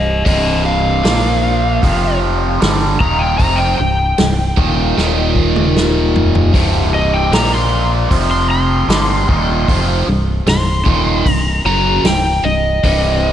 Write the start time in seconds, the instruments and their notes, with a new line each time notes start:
Already playing: fingered electric bass C1, overdriven electric guitar C2 G2, electric slide guitar G4 D#5
0.25 fingered electric bass C1, overdriven electric guitar C2 G2 C3, electric slide guitar G4 D#5, kick, open hi-hat
0.66 electric slide guitar F5
1.03 fingered electric bass A#1, overdriven electric guitar A#2 F3 A#3, snare, open hi-hat
1.83 fingered electric bass F1, overdriven electric guitar F2 C3 F3, kick, open hi-hat
2.60 fingered electric bass G1, overdriven electric guitar G2 D3 G3, snare, open hi-hat
3.00 fingered electric bass D#1, overdriven electric guitar D#2 A#2 D#3, electric slide guitar A#5, kick
3.19 electric slide guitar G5
3.37 fingered electric bass F1, overdriven electric guitar F2 C3 F3, electric slide guitar A#5, kick, open hi-hat
3.56 electric slide guitar G5
3.78 fingered electric bass C1, overdriven electric guitar C2 G2, electric slide guitar G5
4.18 fingered electric bass C1, overdriven electric guitar C2 G2, snare, open hi-hat
4.57 fingered electric bass D#1, overdriven electric guitar D#2 A#2 D#3, kick
4.97 fingered electric bass D#1, overdriven electric guitar D#2 A#2 D#3, snare
5.36 kick
5.56 mid tom
5.77 snare
6.16 floor tom
6.35 floor tom
6.53 fingered electric bass C1, overdriven electric guitar C2 G2 C3, kick, open hi-hat
6.94 electric slide guitar D#5
7.13 electric slide guitar G5
7.31 fingered electric bass A#1, overdriven electric guitar A#2 F3 A#3, electric slide guitar A#5, snare, open hi-hat
7.55 electric slide guitar C6
8.10 fingered electric bass F1, overdriven electric guitar F2 C3 F3, kick, open hi-hat
8.31 electric slide guitar C6
8.51 electric slide guitar C6
8.88 fingered electric bass G1, overdriven electric guitar G2 D3 G3, snare, open hi-hat
9.28 fingered electric bass D#1, overdriven electric guitar D#2 A#2 D#3, kick
9.68 fingered electric bass F1, overdriven electric guitar F2 C3 F3, kick, open hi-hat
10.07 fingered electric bass C1, overdriven electric guitar C2 G2
10.46 fingered electric bass C1, overdriven electric guitar C2 G2, electric slide guitar C6, snare, open hi-hat
10.85 fingered electric bass D#1, overdriven electric guitar D#2 A#2 D#3, kick
11.26 fingered electric bass C1, overdriven electric guitar C2 G2, electric slide guitar A#5, kick, open hi-hat
11.65 fingered electric bass F#1, overdriven electric guitar F#2 C#3 F#3, electric slide guitar A#5
12.04 fingered electric bass C1, overdriven electric guitar C2 G2, electric slide guitar G5, snare, open hi-hat
12.43 fingered electric bass C1, overdriven electric guitar C2 G2, electric slide guitar D#5
12.83 fingered electric bass C1, overdriven electric guitar C2 G2 C3, kick, open hi-hat